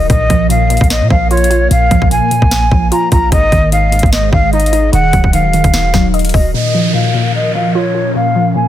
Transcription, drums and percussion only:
0.10 kick, closed hi-hat
0.30 kick, closed hi-hat
0.50 closed hi-hat
0.70 closed hi-hat
0.77 kick, closed hi-hat
0.84 closed hi-hat
0.90 snare, closed hi-hat
1.10 kick
1.31 closed hi-hat
1.37 closed hi-hat
1.44 closed hi-hat
1.51 closed hi-hat
1.71 closed hi-hat
1.91 kick, closed hi-hat
2.02 kick
2.11 closed hi-hat
2.31 closed hi-hat
2.42 kick
2.51 snare, closed hi-hat
2.71 kick
2.92 closed hi-hat
3.12 kick, closed hi-hat
3.32 kick, closed hi-hat
3.52 kick, closed hi-hat
3.72 closed hi-hat
3.92 closed hi-hat
3.99 closed hi-hat
4.03 kick, closed hi-hat
4.13 snare, closed hi-hat
4.33 kick
4.53 closed hi-hat
4.60 closed hi-hat
4.66 closed hi-hat
4.73 closed hi-hat
4.93 closed hi-hat
5.13 kick, closed hi-hat
5.24 kick
5.33 closed hi-hat
5.53 closed hi-hat
5.64 kick, closed hi-hat
5.74 snare, closed hi-hat
5.94 kick, snare
6.14 closed hi-hat
6.19 closed hi-hat
6.25 closed hi-hat
6.29 closed hi-hat
6.34 kick, open hi-hat

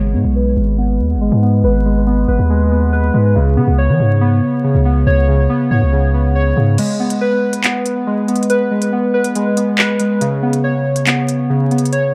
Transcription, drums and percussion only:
6.78 closed hi-hat, crash
7.10 closed hi-hat
7.53 closed hi-hat
7.64 clap, closed hi-hat
7.86 closed hi-hat
8.28 closed hi-hat
8.36 closed hi-hat
8.43 closed hi-hat
8.50 closed hi-hat
8.82 closed hi-hat
9.24 closed hi-hat
9.35 closed hi-hat
9.57 closed hi-hat
9.78 clap
10.00 closed hi-hat
10.21 closed hi-hat
10.53 closed hi-hat
10.96 closed hi-hat
11.07 clap, closed hi-hat
11.29 closed hi-hat
11.71 closed hi-hat
11.78 closed hi-hat
11.85 closed hi-hat
11.93 closed hi-hat

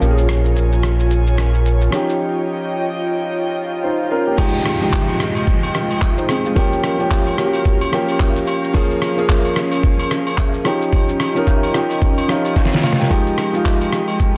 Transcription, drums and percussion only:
0.02 shaker
0.18 shaker
0.29 cross-stick, shaker
0.45 shaker
0.56 shaker
0.72 shaker
0.83 cross-stick, shaker
0.99 shaker
1.11 shaker
1.27 shaker
1.38 cross-stick, shaker
1.54 shaker
1.66 shaker
1.81 shaker
1.92 cross-stick, shaker
2.09 shaker
4.38 kick, crash, high agogo, shaker
4.54 shaker
4.65 cross-stick, high agogo, shaker
4.81 shaker
4.93 kick, clap, low woodblock, shaker
5.09 high agogo, shaker
5.20 cross-stick, shaker
5.35 high agogo, shaker
5.47 kick, shaker
5.63 high agogo, shaker
5.74 cross-stick, shaker
5.91 high agogo, shaker
6.02 kick, clap, low woodblock, shaker
6.18 shaker
6.29 cross-stick, high agogo, shaker
6.45 shaker
6.56 kick, high agogo, shaker
6.72 shaker
6.83 cross-stick, high agogo, shaker
6.99 shaker
7.11 kick, clap, low woodblock, shaker
7.27 high agogo, shaker
7.38 cross-stick, shaker
7.53 high agogo, shaker
7.65 kick, shaker
7.81 high agogo, shaker
7.92 cross-stick, shaker
8.09 high agogo, shaker
8.20 kick, clap, low woodblock, shaker
8.36 shaker
8.47 high agogo, shaker
8.64 shaker
8.74 kick, high agogo, shaker
8.91 shaker
9.02 cross-stick, high agogo, shaker
9.18 shaker
9.29 kick, clap, low woodblock, shaker
9.45 high agogo, shaker
9.56 cross-stick, shaker
9.71 high agogo, shaker
9.83 kick, shaker
9.99 high agogo, shaker
10.10 cross-stick, shaker
10.27 high agogo, shaker
10.38 kick, clap, low woodblock, shaker
10.54 shaker
10.65 cross-stick, high agogo, shaker
10.82 shaker
10.93 kick, high agogo, shaker
11.09 shaker
11.20 cross-stick, high agogo, shaker
11.36 shaker
11.47 kick, low woodblock, shaker
11.63 high agogo, shaker
11.74 cross-stick, shaker
11.90 high agogo, shaker
12.01 kick, shaker
12.18 high agogo, shaker
12.29 cross-stick, shaker
12.45 high agogo, shaker
12.56 kick, snare, low woodblock, shaker
12.65 snare
12.72 snare, shaker
12.83 snare, high agogo, shaker
12.93 snare
13.00 snare, shaker
13.11 kick, high agogo, shaker
13.27 shaker
13.38 cross-stick, high agogo, shaker
13.54 shaker
13.65 kick, clap, low woodblock, shaker
13.81 high agogo, shaker
13.92 cross-stick, shaker
14.08 high agogo, shaker
14.20 kick, shaker

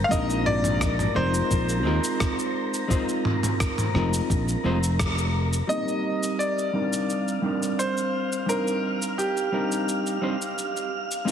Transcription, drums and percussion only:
0.11 kick, cabasa
0.30 cabasa
0.46 mid tom
0.64 mid tom, cabasa
0.81 kick, cross-stick, cabasa
0.99 mid tom, cabasa
1.34 cabasa
1.51 kick, cabasa
1.69 cabasa
2.04 cabasa
2.20 kick, cross-stick, cabasa
2.39 cabasa
2.74 cabasa
2.90 kick, cabasa
3.09 cabasa
3.25 mid tom
3.43 mid tom, cabasa
3.60 kick, cross-stick, cabasa
3.78 mid tom, cabasa
3.95 cross-stick
4.14 cabasa
4.30 kick, cabasa
4.49 cabasa
4.84 cabasa
4.99 kick, cross-stick, cabasa
5.18 cabasa
5.53 cabasa
5.70 cabasa
5.88 cabasa
6.23 cabasa
6.40 cabasa
6.59 cabasa
6.93 cabasa
7.10 cabasa
7.28 cabasa
7.63 cabasa
7.80 cabasa
7.98 cabasa
8.33 cabasa
8.49 cabasa
8.68 cabasa
9.02 cabasa
9.19 cabasa
9.37 cabasa
9.72 cabasa
9.89 cabasa
10.07 cabasa
10.42 cabasa
10.58 cabasa
10.77 cabasa
11.11 cabasa
11.28 cabasa

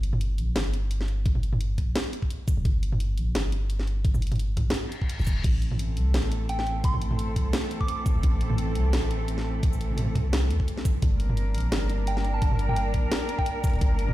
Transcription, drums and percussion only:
0.03 closed hi-hat
0.13 mid tom
0.21 closed hi-hat
0.38 closed hi-hat
0.56 snare, closed hi-hat
0.74 closed hi-hat
0.91 closed hi-hat
1.01 snare
1.08 closed hi-hat
1.26 kick, closed hi-hat
1.35 mid tom
1.43 closed hi-hat
1.53 mid tom
1.61 closed hi-hat
1.78 kick, closed hi-hat
1.96 snare, closed hi-hat
2.13 closed hi-hat
2.22 kick
2.31 closed hi-hat
2.48 kick, closed hi-hat, shaker
2.65 kick, closed hi-hat
2.83 closed hi-hat
2.93 mid tom
3.00 closed hi-hat
3.18 closed hi-hat
3.35 snare, closed hi-hat
3.52 closed hi-hat
3.70 closed hi-hat
3.79 snare
3.87 closed hi-hat
4.05 kick, closed hi-hat
4.14 mid tom, shaker
4.22 closed hi-hat
4.27 closed hi-hat
4.32 closed hi-hat, mid tom
4.36 closed hi-hat
4.39 closed hi-hat
4.57 kick, closed hi-hat, mid tom
4.70 snare, closed hi-hat
4.92 closed hi-hat
5.02 kick
5.09 closed hi-hat
5.19 shaker
5.21 shaker
5.24 closed hi-hat, shaker
5.27 kick, shaker
5.44 kick, closed hi-hat, crash
5.62 closed hi-hat
5.72 mid tom
5.79 closed hi-hat
5.97 closed hi-hat
6.14 snare, closed hi-hat
6.32 closed hi-hat
6.49 closed hi-hat
6.59 snare
6.67 closed hi-hat
6.84 kick, closed hi-hat
6.94 mid tom
7.02 closed hi-hat
7.11 mid tom
7.19 closed hi-hat
7.36 kick, closed hi-hat
7.53 snare, closed hi-hat
7.71 closed hi-hat
7.81 kick
7.88 closed hi-hat
8.06 kick, closed hi-hat, shaker
8.23 kick, closed hi-hat
8.41 closed hi-hat
8.50 mid tom
8.58 closed hi-hat
8.75 closed hi-hat
8.93 snare, closed hi-hat
9.11 closed hi-hat
9.28 closed hi-hat
9.38 snare
9.63 kick, closed hi-hat
9.73 shaker
9.81 closed hi-hat
9.90 mid tom
9.92 mid tom
9.95 mid tom
9.97 closed hi-hat, mid tom
9.99 mid tom
10.02 mid tom
10.05 mid tom
10.15 kick, closed hi-hat, mid tom
10.33 snare, closed hi-hat
10.51 closed hi-hat
10.60 kick
10.68 closed hi-hat
10.77 snare
10.85 kick, closed hi-hat, shaker
11.02 kick, closed hi-hat
11.20 closed hi-hat
11.29 mid tom
11.37 closed hi-hat
11.55 closed hi-hat
11.58 closed hi-hat
11.60 closed hi-hat
11.72 snare, closed hi-hat
11.90 closed hi-hat
12.07 closed hi-hat
12.17 snare
12.25 closed hi-hat
12.42 kick, closed hi-hat
12.52 mid tom
12.59 closed hi-hat
12.69 mid tom
12.76 closed hi-hat
12.94 kick, closed hi-hat
13.12 snare, closed hi-hat
13.29 closed hi-hat
13.39 kick
13.46 closed hi-hat
13.64 kick, closed hi-hat, shaker
13.67 closed hi-hat
13.70 closed hi-hat
13.73 closed hi-hat
13.75 closed hi-hat
13.79 kick, closed hi-hat
13.81 closed hi-hat
13.99 closed hi-hat
14.09 mid tom

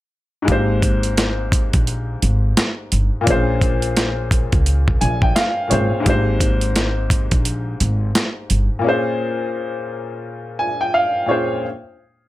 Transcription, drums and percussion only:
0.48 kick, closed hi-hat
0.82 kick, closed hi-hat
1.03 closed hi-hat
1.17 snare, closed hi-hat
1.52 kick, closed hi-hat
1.73 kick, closed hi-hat
1.87 closed hi-hat
2.22 closed hi-hat
2.57 snare, closed hi-hat
2.92 closed hi-hat
3.27 kick, closed hi-hat
3.61 kick, closed hi-hat
3.82 closed hi-hat
3.97 snare, closed hi-hat
4.31 kick, closed hi-hat
4.52 kick, closed hi-hat
4.66 closed hi-hat
4.88 kick
5.01 closed hi-hat
5.22 kick
5.36 snare, closed hi-hat
5.71 closed hi-hat
6.06 kick, closed hi-hat
6.40 kick, closed hi-hat
6.61 closed hi-hat
6.76 snare, closed hi-hat
7.10 kick, closed hi-hat
7.31 kick, closed hi-hat
7.45 closed hi-hat
7.80 closed hi-hat
8.15 snare, closed hi-hat
8.50 closed hi-hat

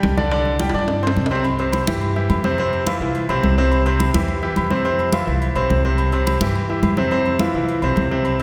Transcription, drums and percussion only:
0.03 high conga, high timbale, low timbale
0.18 high conga
0.31 high conga, high timbale
0.45 high conga
0.59 high conga, high timbale
0.69 high timbale
0.74 high conga
0.79 high timbale
0.88 high conga, low timbale
1.03 high conga
1.07 low timbale
1.17 high conga
1.26 low timbale
1.31 high conga
1.35 low timbale
1.44 high conga, low agogo
1.59 high conga, low agogo
1.72 high conga, low agogo
1.87 high conga
2.01 high conga, low agogo
2.16 high conga
2.30 high conga, low timbale, low agogo
2.44 high conga
2.58 high conga, low agogo
2.73 high conga, low agogo
2.87 high conga, low agogo
3.01 high conga
3.15 high conga, low agogo
3.29 high conga, low agogo
3.43 high conga, low timbale
3.58 high conga
3.72 high conga, low agogo
3.86 high conga, low agogo
4.00 high conga, low agogo
4.14 high conga
4.28 high conga, low agogo
4.42 high conga
4.56 high conga, low agogo
4.70 high conga
4.85 high conga, low agogo
4.99 high conga, low agogo
5.13 high conga, low agogo
5.28 high conga
5.42 high conga, low agogo
5.56 high conga, low agogo
5.70 high conga, low timbale
5.85 high conga
5.98 high conga, low agogo
6.12 high conga, low agogo
6.27 high conga, low agogo
6.41 high conga
6.55 high conga, low agogo
6.69 high conga
6.83 high conga, low agogo
6.97 high conga
7.11 high conga, low agogo
7.25 high conga, low agogo
7.39 high conga, low agogo
7.54 high conga
7.68 high conga, low agogo
7.82 high conga, low agogo
7.96 high conga, low timbale
8.11 high conga
8.25 high conga, low agogo
8.40 high conga, low agogo

